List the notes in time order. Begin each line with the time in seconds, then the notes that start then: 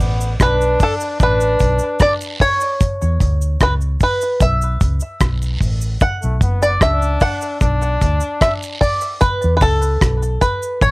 Already playing: D5
0.00 A1 B3, open hi-hat, cabasa
0.21 cabasa
0.40 B1 D4 B4, kick, cross-stick, hi-hat pedal, cabasa
0.61 cabasa
0.80 A4, kick, open hi-hat, cabasa
1.00 cabasa
1.20 A1 D4 B4, kick, hi-hat pedal, cabasa
1.41 cabasa
1.59 B1, kick, closed hi-hat, cabasa
1.79 cabasa
2.00 D5, kick, cross-stick, cabasa, long guiro
2.21 cabasa
2.40 C#5, kick, open hi-hat, cabasa
2.61 cabasa
2.81 kick, hi-hat pedal, cabasa
3.02 E2, cabasa
3.20 D2, kick, closed hi-hat, cabasa
3.42 cabasa
3.60 C#2 B4, kick, cross-stick, cabasa
3.81 cabasa
4.00 B4, kick, open hi-hat, cabasa
4.21 cabasa
4.40 B1 E5, kick, hi-hat pedal, cabasa
4.62 cabasa
4.81 C#2, kick, closed hi-hat, cabasa
5.00 cabasa
5.21 B1, kick, cross-stick, cabasa, long guiro
5.42 cabasa
5.61 A1, kick, open hi-hat, cabasa
5.81 cabasa
6.01 F#5, kick, hi-hat pedal, cabasa
6.22 B1 A3, cabasa
6.41 F#1 B3, kick, closed hi-hat, cabasa
6.62 D5, cabasa
6.81 C#2 D4 E5, kick, cross-stick, cabasa
7.02 cabasa
7.20 F#5, kick, open hi-hat, cabasa
7.42 cabasa
7.61 B1 D4, kick, hi-hat pedal, cabasa
7.82 cabasa
8.01 D2, kick, closed hi-hat, cabasa
8.20 cabasa
8.41 E5, kick, cross-stick, cabasa, long guiro
8.63 cabasa
8.81 D5, kick, open hi-hat, cabasa
9.01 cabasa
9.21 B4, kick, hi-hat pedal, cabasa
9.42 E2, cabasa
9.57 B4
9.61 C#2 A4, kick, open hi-hat, cabasa
9.82 cabasa
10.01 B1, kick, cross-stick, hi-hat pedal, cabasa
10.23 cabasa
10.41 B4, kick, closed hi-hat, cabasa
10.63 cabasa
10.81 A1 C#5, kick, cabasa